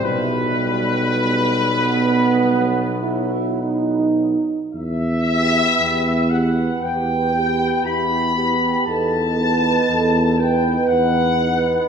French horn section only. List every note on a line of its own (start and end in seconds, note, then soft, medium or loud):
0.00 1.09 E4 medium
1.25 2.97 B3 loud
3.01 3.59 E4 medium
3.60 4.74 D#4 medium
6.81 7.29 B4 medium
7.34 7.85 G4 medium
7.84 8.36 E4 medium
8.35 8.87 G4 medium
8.87 9.38 A4 medium
9.39 9.90 B4 medium
9.90 10.39 A4 medium
10.39 11.88 B4 medium